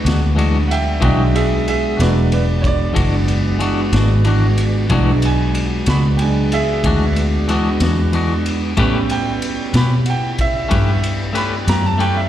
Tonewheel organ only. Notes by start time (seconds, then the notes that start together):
Already playing: F#3 G#3 B3 D4
1.03 D#3 G#3 C4 G5
1.34 G#3 B3 D4 F#4
4.90 G#3 B3 D4 F#4
8.77 B3 C#4 E4 G4